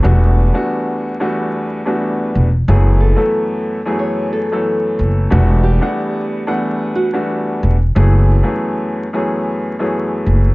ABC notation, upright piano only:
X:1
M:4/4
L:1/16
Q:"Swing 16ths" 1/4=91
K:F#phr
V:1 name="Upright piano"
[E,,G,A,B,DF]3 [E,,G,A,B,DF]4 [E,,G,A,B,DF]4 [E,,G,A,B,DF]4 z | [F,,E,A,B,C^G]3 [F,,E,A,B,CA]4 [F,,E,A,B,CG]4 [F,,E,A,B,CA]4- [F,,E,A,B,CA] | [E,,G,A,B,DF]3 [E,,G,A,B,Df]4 [E,,G,A,B,Df]4 [E,,G,A,B,DF]4 z | [F,,E,A,B,C^G]3 [F,,E,A,B,CG]4 [F,,E,A,B,CG]4 [F,,E,A,B,CG]4- [F,,E,A,B,CG] |]